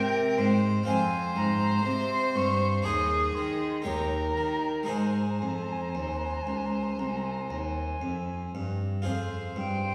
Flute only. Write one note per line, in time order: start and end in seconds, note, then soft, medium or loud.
0.00 0.59 G5 loud
0.87 1.33 G#5 loud
1.36 1.85 A#5 medium
1.86 2.37 C6 loud
2.35 2.86 C#6 medium
2.84 3.36 D#6 loud
3.35 3.85 C6 medium
3.85 4.91 A#5 medium
4.89 4.99 G#5 medium
4.98 5.07 A#5 medium
5.06 5.16 G#5 medium
5.14 5.24 A#5 medium
5.23 5.32 G#5 medium
5.30 5.40 A#5 medium
5.39 5.50 G#5 medium
5.48 5.57 A#5 medium
5.55 5.65 G#5 medium
5.63 5.74 A#5 medium
5.72 5.83 G#5 medium
5.82 5.91 A#5 medium
5.90 6.01 G#5 medium
5.99 6.10 A#5 medium
6.09 6.18 G#5 medium
6.17 6.27 A#5 medium
6.25 6.35 G#5 medium
6.34 6.44 A#5 medium
6.42 6.50 G#5 medium
6.49 6.58 A#5 medium
6.57 6.67 G#5 medium
6.66 6.76 A#5 medium
6.74 6.84 G#5 medium
6.83 6.93 A#5 medium
6.92 7.01 G#5 medium
6.99 7.10 A#5 medium
7.08 7.18 G#5 medium
7.16 7.25 A#5 medium
7.24 7.33 G#5 medium
7.32 7.42 A#5 medium
7.41 7.51 G#5 medium
7.50 7.60 A#5 medium
7.59 8.55 G#5 medium
9.06 9.52 F5 medium
9.57 9.95 G5 medium